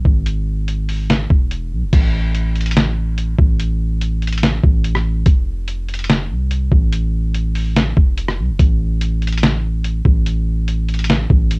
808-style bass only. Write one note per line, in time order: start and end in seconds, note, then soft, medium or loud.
0.05 1.26 G#1 loud
1.30 1.73 E1 loud
1.72 1.84 B1 loud
1.82 1.92 E1 loud
1.93 3.35 A1 loud
3.39 4.60 A1 loud
4.64 5.24 A1 loud
5.26 6.32 F1 loud
6.30 6.70 C2 loud
6.72 7.93 A1 loud
7.97 8.40 F1 loud
8.39 8.51 C2 loud
8.49 8.59 F1 loud
8.59 10.01 A1 loud
10.05 11.26 A1 loud
11.30 11.59 A1 loud